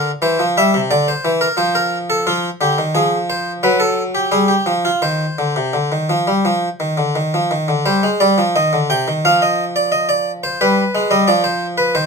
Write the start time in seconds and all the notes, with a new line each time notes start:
0.22 E3 C5
0.39 F3
0.57 G3 E5
0.74 C3
0.91 D3 D5
1.08 C5
1.25 E3
1.41 A#4
1.57 F3 C5
1.75 A#4
2.10 A4
2.27 F3 F4
2.61 D3 G4
2.78 D#3
2.95 F3 G#4
3.30 C5
3.63 F#3 B4
3.80 A4
4.15 G4
4.32 G3 G#4
4.48 G4
4.66 F3
4.85 F4
5.02 D#3 C5
5.38 D3
5.56 C3
5.73 D3
5.92 D#3
6.09 F3
6.27 G3
6.45 F3
6.80 D#3
6.97 D3
7.15 D#3
7.34 F3
7.51 D#3
7.68 D3
7.86 G3 C5
8.03 G#3
8.20 G3 D5
8.38 F3
8.56 D#3 D#5
8.73 D3
8.90 C3 G5
9.08 D#3
9.25 F3 F5
9.42 D#5
9.76 D5
9.92 D#5
10.09 D5
10.43 C5
10.61 G3 B4
10.95 G#3
11.11 G3 D#5
11.28 F3 D5
11.44 C5
11.78 B4
11.95 D#3 C5